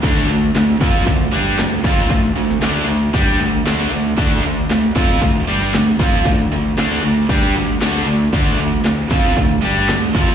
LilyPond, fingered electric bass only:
\new Staff \with { instrumentName = "Fingered electric bass" } { \clef bass \time 4/4 \key d \minor \tempo 4 = 116 d,8 d,8 d,8 f,8 d,8 g,8 d,8 f,8 | d,8 d,8 d,8 d,8 g,8 d,8 d,8 d,8 | d,8 d,8 d,8 f,8 d,8 g,8 d,8 f,8 | d,8 d,8 d,8 d,8 g,8 d,8 d,8 d,8 |
d,8 d,8 d,8 f,8 d,8 g,8 d,8 f,8 | }